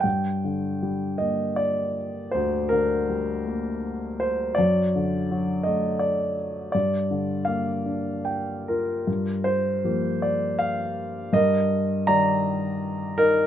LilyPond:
<<
  \new Staff \with { instrumentName = "Grand piano" } { \time 3/4 \key g \minor \tempo 4 = 81 << { g''4. ees''8 d''4 | c''8 bes'2 c''8 | d''4. ees''8 d''4 | d''4 f''4 g''8 bes'8~ |
bes'8 c''4 d''8 f''4 | ees''4 bes''4. bes'8 | } \\ { r2. | r2. | r2. | r2 r8 f'8~ |
f'4 r2 | bes'4 d''4. ees'8 | } >> }
  \new Staff \with { instrumentName = "Grand piano" } { \clef bass \time 3/4 \key g \minor g,8 d8 g8 bes4. | d,8 d8 g8 bes4. | fis,8 d8 fis8 a4. | g,8 d8 bes8 d'4. |
g,4 <f g bes>2 | g,4 <ees g>2 | }
>>